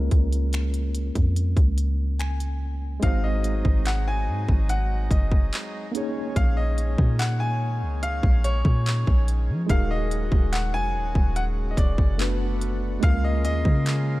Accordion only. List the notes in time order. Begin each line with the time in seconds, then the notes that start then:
3.03 F#3 G#3 D#4
5.94 D#3 G#3 C#4
9.69 C#3 F#3 F#4
12.20 D3 A3 B3 F#4
13.03 C#3 G#3 A#3 F4